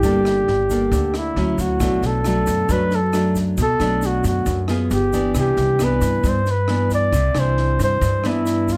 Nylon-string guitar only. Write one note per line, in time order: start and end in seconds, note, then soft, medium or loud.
0.04 0.90 G3 medium
0.04 0.48 A#3 medium
0.04 0.48 D4 medium
0.04 0.48 A4 medium
0.70 1.33 A#3 medium
0.70 1.33 D4 soft
0.70 1.34 A4 medium
0.93 1.35 D3 soft
1.37 1.78 F#3 soft
1.37 1.78 C#4 soft
1.37 1.78 E4 medium
1.82 2.68 B2 medium
1.82 2.22 F#3 medium
1.82 2.22 A3 medium
1.82 2.22 D4 medium
2.26 2.66 F#3 medium
2.26 2.66 A3 soft
2.26 2.67 D4 medium
2.70 3.56 F#2 medium
2.70 2.98 F#3 soft
2.70 2.98 A3 soft
2.70 2.99 D4 medium
3.14 3.58 F#3 soft
3.14 3.58 A3 medium
3.14 3.58 D4 medium
3.59 4.45 B2 medium
3.80 4.66 F#3 medium
3.80 4.66 A3 medium
3.80 4.66 D4 medium
4.47 4.89 F#2 soft
4.69 5.10 B3 medium
4.69 5.10 F4 medium
4.69 5.10 G#4 medium
5.13 5.76 E3 medium
5.13 5.77 B3 medium
5.13 5.77 D4 medium
5.36 6.22 C3 medium
5.80 6.40 E3 soft
5.80 6.40 B3 soft
5.80 6.40 D4 soft
6.25 7.11 G2 medium
6.69 7.13 E3 soft
6.69 7.13 B3 soft
6.69 7.13 D4 medium
7.14 8.00 C3 medium
7.35 8.20 E3 medium
7.35 8.21 D4 medium
8.02 8.77 G2 medium
8.25 8.77 E3 medium
8.25 8.77 B3 medium
8.25 8.77 D4 medium